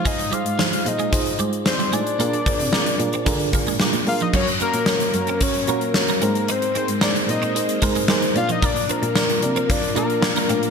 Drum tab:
CC |----------------|----------------|x---------------|----------------|
HH |xxxx-xxxxxxx-xxx|xxxx-xxxxxxx-xox|-xxx-xxxxxxx-xxx|xxxx-xxxxxxx-xxx|
SD |----o-------o---|----o-------o---|----o-------o---|----o-------o---|
BD |o-------o-------|--o-----o-o-----|o-------o-------|----------o-----|

CC |----------------|
HH |xxxx-xxxxxxx-xxx|
SD |----o-------o---|
BD |o-------o-------|